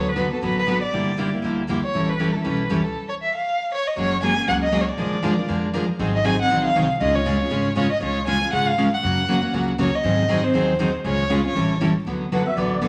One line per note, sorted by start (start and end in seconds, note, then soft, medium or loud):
0.00 0.31 D2 medium
0.08 0.32 B4 medium
0.16 0.26 D3 medium
0.16 0.26 F#3 medium
0.16 0.27 B3 medium
0.16 0.27 F#4 medium
0.16 0.27 A4 medium
0.16 0.27 B4 medium
0.30 0.42 B3 soft
0.30 0.42 F#4 soft
0.30 0.42 A4 medium
0.30 0.41 B4 soft
0.42 0.83 A1 medium
0.42 0.60 D3 medium
0.42 0.61 F#3 medium
0.42 0.61 B3 medium
0.42 0.61 F#4 medium
0.42 0.60 A4 medium
0.42 0.61 B4 medium
0.42 0.57 B4 medium
0.59 0.81 B4 medium
0.67 0.77 D3 medium
0.67 0.77 F#3 medium
0.67 0.78 B3 medium
0.67 0.78 F#4 medium
0.67 0.77 A4 medium
0.67 0.78 B4 medium
0.83 1.30 D5 medium
0.93 1.33 G1 medium
0.93 1.11 D3 medium
0.93 1.11 G3 medium
0.93 1.11 A#3 medium
0.93 1.11 E4 medium
0.93 1.11 G4 medium
1.19 1.29 D3 medium
1.19 1.28 G3 medium
1.19 1.29 A#3 medium
1.19 1.29 E4 medium
1.19 1.29 G4 medium
1.33 1.43 A#3 soft
1.33 1.43 E4 soft
1.33 1.43 G4 soft
1.43 1.84 D2 medium
1.43 1.62 D3 medium
1.43 1.62 G3 medium
1.43 1.62 A#3 medium
1.43 1.62 E4 medium
1.43 1.62 G4 medium
1.69 1.79 D3 medium
1.69 1.79 G3 medium
1.69 1.79 A#3 medium
1.69 1.79 E4 medium
1.69 1.80 G4 medium
1.84 2.11 C#5 medium
1.94 2.35 A1 medium
1.94 2.13 E3 medium
1.94 2.13 G3 medium
1.94 2.13 C#4 medium
1.94 2.13 E4 medium
1.94 2.13 A4 medium
2.09 2.35 B4 medium
2.19 2.30 E3 medium
2.19 2.30 G3 medium
2.19 2.30 C#4 medium
2.19 2.30 E4 medium
2.19 2.30 A4 medium
2.33 2.43 C#4 soft
2.33 2.43 E4 soft
2.33 2.44 A4 soft
2.33 2.45 A4 medium
2.44 2.67 B1 medium
2.44 2.63 E3 medium
2.44 2.63 G3 medium
2.44 2.63 C#4 medium
2.44 2.63 E4 medium
2.44 2.63 A4 medium
2.44 2.69 B4 medium
2.70 2.92 C#2 medium
2.70 2.80 E3 medium
2.70 2.80 G3 medium
2.70 2.80 C#4 medium
2.70 2.81 E4 medium
2.70 2.81 A4 medium
2.82 3.07 A4 medium
3.09 3.14 C#5 medium
3.23 3.35 E5 medium
3.35 3.69 F5 medium
3.74 3.89 C#5 medium
3.87 3.98 D#5 medium
3.96 4.37 F#1 medium
3.96 4.15 F#3 medium
3.96 4.15 G#3 medium
3.96 4.16 A#3 medium
3.96 4.16 C#4 medium
3.96 4.15 F#4 medium
3.96 4.16 G#4 medium
3.96 4.15 A#4 medium
3.96 4.22 C#5 medium
4.22 4.33 F#3 medium
4.22 4.32 G#3 medium
4.22 4.33 A#3 medium
4.22 4.33 C#4 medium
4.22 4.33 F#4 medium
4.22 4.33 G#4 medium
4.22 4.33 A#4 medium
4.22 4.47 G#5 loud
4.37 4.47 A#3 soft
4.37 4.47 C#4 soft
4.37 4.47 G#4 medium
4.47 4.88 C#2 medium
4.47 4.65 F#3 medium
4.47 4.65 G#3 medium
4.47 4.66 A#3 medium
4.47 4.66 C#4 medium
4.47 4.66 F#4 medium
4.47 4.66 G#4 medium
4.47 4.66 A#4 medium
4.47 4.55 F#5 medium
4.63 4.83 D#5 medium
4.72 4.83 F#3 medium
4.72 4.83 G#3 medium
4.72 4.83 A#3 medium
4.72 4.83 C#4 medium
4.72 4.83 F#4 medium
4.72 4.83 G#4 medium
4.72 4.83 A#4 medium
4.81 4.91 C#5 medium
4.89 5.64 D5 medium
4.97 5.38 A#1 medium
4.97 5.16 D3 medium
4.97 5.16 F3 medium
4.97 5.16 G#3 medium
4.97 5.17 A#3 medium
4.97 5.16 D4 medium
4.97 5.16 F4 medium
4.97 5.17 G#4 medium
4.97 5.16 A#4 medium
5.22 5.33 D3 medium
5.22 5.33 F3 medium
5.22 5.33 G#3 medium
5.22 5.34 A#3 medium
5.22 5.33 D4 medium
5.22 5.33 F4 medium
5.22 5.34 G#4 medium
5.22 5.33 A#4 medium
5.37 5.47 D4 soft
5.37 5.47 F4 soft
5.37 5.47 A#4 soft
5.48 5.89 F2 medium
5.48 5.67 D3 medium
5.48 5.66 F3 medium
5.48 5.67 G#3 medium
5.48 5.67 A#3 medium
5.48 5.67 D4 medium
5.48 5.67 F4 medium
5.48 5.67 G#4 medium
5.48 5.67 A#4 medium
5.73 5.84 D3 medium
5.73 5.84 F3 medium
5.73 5.84 G#3 medium
5.73 5.85 A#3 medium
5.73 5.84 D4 medium
5.73 5.84 F4 medium
5.73 5.85 G#4 medium
5.73 5.84 A#4 loud
5.99 6.40 G#1 medium
5.99 6.17 D#3 medium
5.99 6.18 F#3 medium
5.99 6.17 C4 medium
5.99 6.18 D#4 medium
5.99 6.18 G#4 medium
6.15 6.27 D#5 medium
6.24 6.34 D#3 medium
6.24 6.35 F#3 medium
6.24 6.35 C4 medium
6.24 6.35 D#4 medium
6.24 6.35 G#4 medium
6.24 6.39 G#5 medium
6.39 6.50 C4 soft
6.39 6.50 D#4 soft
6.39 6.50 G#4 soft
6.39 6.64 F#5 medium
6.50 6.72 A#1 medium
6.50 6.68 D#3 medium
6.50 6.68 F#3 medium
6.50 6.68 C4 medium
6.50 6.69 D#4 medium
6.50 6.69 G#4 medium
6.65 6.88 F5 medium
6.75 6.96 C2 medium
6.75 6.85 D#3 medium
6.75 6.86 F#3 medium
6.75 6.86 C4 medium
6.75 6.86 D#4 medium
6.75 6.86 G#4 medium
7.00 7.41 C#2 medium
7.00 7.19 C#3 medium
7.00 7.19 G#3 medium
7.00 7.19 C#4 medium
7.00 7.19 F4 medium
7.00 7.19 G#4 medium
7.00 7.17 D#5 medium
7.16 7.77 C#5 medium
7.25 7.36 C#3 medium
7.25 7.36 G#3 medium
7.25 7.36 C#4 medium
7.25 7.36 F4 medium
7.25 7.36 G#4 medium
7.40 7.50 C#4 soft
7.40 7.50 F4 soft
7.40 7.50 G#4 medium
7.50 7.91 G#1 medium
7.50 7.69 C#3 medium
7.50 7.69 G#3 medium
7.50 7.69 C#4 medium
7.50 7.69 F4 medium
7.50 7.69 G#4 medium
7.77 7.87 C#3 medium
7.77 7.87 G#3 medium
7.77 7.87 C#4 medium
7.77 7.87 F4 medium
7.77 7.87 G#4 medium
7.77 7.90 C#5 medium
7.92 8.01 D#5 medium
8.01 8.42 C#2 medium
8.01 8.20 C#3 medium
8.01 8.20 G#3 medium
8.01 8.20 C#4 medium
8.01 8.20 F4 medium
8.01 8.20 G#4 medium
8.01 8.26 C#5 medium
8.27 8.37 C#3 medium
8.27 8.37 G#3 medium
8.27 8.37 C#4 medium
8.27 8.38 F4 medium
8.27 8.38 G#4 medium
8.27 8.51 G#5 medium
8.41 8.51 C#4 soft
8.41 8.51 F4 soft
8.41 8.52 G#4 medium
8.52 8.93 G#1 medium
8.52 8.70 C#3 medium
8.52 8.70 G#3 medium
8.52 8.70 C#4 medium
8.52 8.70 F4 medium
8.52 8.71 G#4 medium
8.52 8.70 F#5 medium
8.68 8.92 F5 medium
8.78 8.88 C#3 medium
8.78 8.88 G#3 medium
8.78 8.88 C#4 medium
8.78 8.88 F4 medium
8.78 8.88 G#4 medium
8.94 9.64 F#5 medium
9.03 9.44 F#2 medium
9.03 9.21 C#3 medium
9.03 9.21 F#3 medium
9.03 9.21 A#3 medium
9.03 9.21 C#4 medium
9.03 9.22 F#4 medium
9.03 9.21 A#4 medium
9.28 9.38 C#3 medium
9.28 9.38 F#3 medium
9.28 9.38 A#3 medium
9.28 9.38 C#4 medium
9.28 9.39 F#4 medium
9.28 9.39 A#4 medium
9.42 9.53 A#3 soft
9.42 9.53 C#4 soft
9.42 9.53 F#4 medium
9.53 9.94 C#2 medium
9.53 9.71 C#3 medium
9.53 9.71 F#3 medium
9.53 9.72 A#3 medium
9.53 9.72 C#4 medium
9.53 9.72 F#4 medium
9.53 9.72 A#4 medium
9.78 9.89 C#3 medium
9.78 9.89 F#3 medium
9.78 9.89 A#3 medium
9.78 9.89 C#4 medium
9.78 9.89 F#4 loud
9.78 9.89 A#4 medium
9.78 9.97 C#5 medium
9.96 10.46 D#5 medium
10.04 10.44 G#2 medium
10.04 10.22 D#3 medium
10.04 10.22 F#3 medium
10.04 10.22 C4 medium
10.04 10.22 D#4 medium
10.04 10.22 G#4 medium
10.28 10.39 D#3 medium
10.28 10.39 F#3 medium
10.28 10.39 C4 medium
10.28 10.39 D#4 medium
10.28 10.39 G#4 medium
10.42 10.53 C4 soft
10.42 10.53 D#4 medium
10.42 10.53 G#4 medium
10.42 10.94 C5 medium
10.54 10.95 D#2 medium
10.54 10.72 D#3 medium
10.54 10.72 F#3 medium
10.54 10.72 C4 medium
10.54 10.72 D#4 medium
10.54 10.73 G#4 medium
10.79 10.89 D#3 medium
10.79 10.89 F#3 medium
10.79 10.90 C4 medium
10.79 10.90 D#4 medium
10.79 10.90 G#4 medium
11.04 11.45 C#2 medium
11.04 11.23 C#3 medium
11.04 11.23 G#3 medium
11.04 11.23 C#4 medium
11.04 11.23 F4 medium
11.04 11.23 G#4 medium
11.04 11.42 C#5 medium
11.30 11.40 C#3 medium
11.30 11.40 G#3 medium
11.30 11.40 C#4 medium
11.30 11.40 F4 medium
11.30 11.40 G#4 medium
11.44 11.54 C#4 soft
11.44 11.55 F4 soft
11.44 11.55 G#4 soft
11.44 11.80 C#5 medium
11.55 11.96 A1 medium
11.55 11.73 E3 medium
11.55 11.73 G3 medium
11.55 11.73 C#4 medium
11.55 11.73 E4 medium
11.55 11.74 A4 medium
11.81 11.91 E3 medium
11.81 11.91 G3 medium
11.81 11.91 C#4 medium
11.81 11.91 E4 medium
11.81 11.91 A4 medium
12.05 12.46 D2 medium
12.05 12.24 D3 medium
12.05 12.24 F#3 medium
12.05 12.24 B3 medium
12.05 12.25 F#4 medium
12.05 12.25 A4 medium
12.05 12.25 B4 medium
12.32 12.42 D3 medium
12.32 12.42 F#3 medium
12.32 12.42 B3 medium
12.32 12.42 F#4 medium
12.32 12.42 A4 medium
12.32 12.42 B4 medium
12.32 12.46 F#5 medium
12.46 12.57 B3 soft
12.46 12.57 F#4 soft
12.46 12.56 B4 medium
12.46 12.56 E5 medium
12.56 12.88 A1 medium
12.56 12.75 D3 medium
12.56 12.75 F#3 medium
12.56 12.75 B3 medium
12.56 12.75 F#4 medium
12.56 12.75 A4 medium
12.56 12.75 B4 medium
12.56 12.88 D5 medium
12.81 12.88 D3 medium
12.81 12.88 F#3 medium
12.81 12.88 B3 medium
12.81 12.88 F#4 medium
12.81 12.88 A4 medium
12.81 12.88 B4 medium